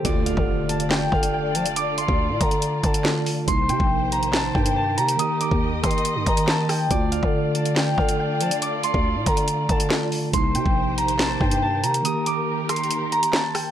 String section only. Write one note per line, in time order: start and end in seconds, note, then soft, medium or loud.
0.05 3.44 D3 medium
0.05 3.44 A3 medium
0.05 3.44 F4 medium
0.05 3.44 D5 medium
3.48 6.87 D#3 medium
3.48 6.87 A#3 medium
3.48 6.87 G4 medium
3.48 5.18 C5 medium
5.19 6.89 D#5 medium
6.91 10.30 D3 medium
6.91 10.30 A3 medium
6.91 10.30 F4 medium
6.91 10.30 D5 loud
10.34 12.03 D#3 medium
10.34 13.71 A#3 medium
10.34 12.03 G4 medium
10.34 12.03 C5 medium
12.05 13.71 D#3 medium
12.05 13.71 G4 medium
12.05 13.71 A#4 medium